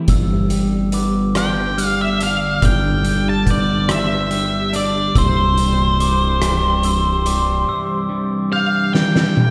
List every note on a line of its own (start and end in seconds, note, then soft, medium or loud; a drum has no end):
0.00 9.50 G4 medium
0.08 2.58 G1 medium
0.08 2.20 G2 medium
0.08 5.12 D3 medium
0.08 5.12 G3 medium
0.08 5.12 B3 medium
0.08 0.94 E6 medium
0.08 kick medium
0.08 closed hi-hat medium
0.50 1.77 G3 soft
0.50 closed hi-hat soft
0.92 3.04 B3 soft
0.92 1.78 D6 medium
0.92 closed hi-hat medium
1.35 2.18 D4 medium
1.35 1.86 G5 medium
1.35 cross-stick medium
1.35 closed hi-hat medium
1.78 3.03 G3 medium
1.78 2.20 F6 medium
1.78 closed hi-hat medium
1.86 2.02 F5 medium
2.01 2.22 E5 medium
2.19 3.87 D4 medium
2.19 2.62 E6 medium
2.19 closed hi-hat soft
2.23 2.65 F5 medium
2.62 5.12 G1 medium
2.62 4.73 G2 soft
2.62 3.29 G5 medium
2.62 3.47 F6 medium
2.62 kick medium
2.62 closed hi-hat medium
3.03 4.30 G3 soft
3.03 closed hi-hat soft
3.29 3.49 A5 medium
3.46 5.15 B3 soft
3.46 4.32 G6 medium
3.46 kick medium
3.46 closed hi-hat soft
3.51 3.91 D5 medium
3.88 4.72 D4 medium
3.88 4.76 E5 medium
3.88 cross-stick medium
3.88 closed hi-hat medium
4.30 5.99 G3 soft
4.30 closed hi-hat soft
4.73 5.15 D4 medium
4.73 5.14 D5 medium
4.73 closed hi-hat soft
5.14 7.64 C1 medium
5.14 7.26 C2 medium
5.14 9.50 E3 medium
5.14 9.50 G3 medium
5.14 7.65 C4 medium
5.14 6.00 E6 medium
5.14 kick medium
5.14 closed hi-hat medium
5.18 9.34 C5 medium
5.57 6.84 G2 medium
5.57 closed hi-hat soft
6.00 8.10 C3 medium
6.00 6.84 D6 medium
6.00 closed hi-hat soft
6.42 7.25 G3 medium
6.42 cross-stick medium
6.42 closed hi-hat medium
6.83 8.08 G2 medium
6.83 7.26 E6 medium
6.83 closed hi-hat soft
7.26 8.93 G3 medium
7.26 7.68 D6 medium
7.26 closed hi-hat medium
7.68 9.50 C2 medium
7.68 9.50 D4 medium
7.68 8.53 E6 medium
8.09 9.34 G2 medium
8.51 9.50 C3 medium
8.51 8.91 F5 medium
8.51 9.36 G6 medium
8.93 9.50 G3 medium
8.93 9.50 G5 medium
8.93 snare soft
9.16 snare soft
9.36 9.50 G2 medium
9.36 high tom soft